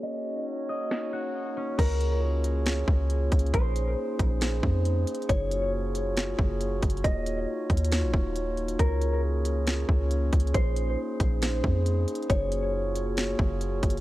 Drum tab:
CC |------------------------------------------------|x-----------------------------------------------|------------------------------------------------|------------------------------------------------|
HH |------------------o-----------------------------|x-----x-----------x-----x-----------x-----x-x-x-|x-----x-----------x-----x-----------x-----x-x-x-|x-----x-----------x-----x-----------x-----x-x-x-|
SD |------------------------o-----------------------|------------------------o-----------------------|------------------------o-----------------------|------------------------o-----------------------|
BD |------------------------------------------------|o-----------------------------o-----------o-----|o-----------------o-----------o-----------------|o-----------------------------o-----------o-----|

CC |------------------------------------------------|------------------------------------------------|------------------------------------------------|------------------------------------------------|
HH |x-----x-----------x-x-x-x-----------x-----x--x--|x-----x-----------x-----x-----------x-----x-x-x-|x-----x-----------x-----x-----------x-----x-x-x-|x-----x-----------x-----x-----------x-----x-x-x-|
SD |------------------------o-----------------------|------------------------o-----------------------|------------------------o-----------------------|------------------------o-----------------------|
BD |o-----------------o-----------o-----------------|o-----------------------------o-----------o-----|o-----------------o-----------o-----------------|o-----------------------------o-----------o-----|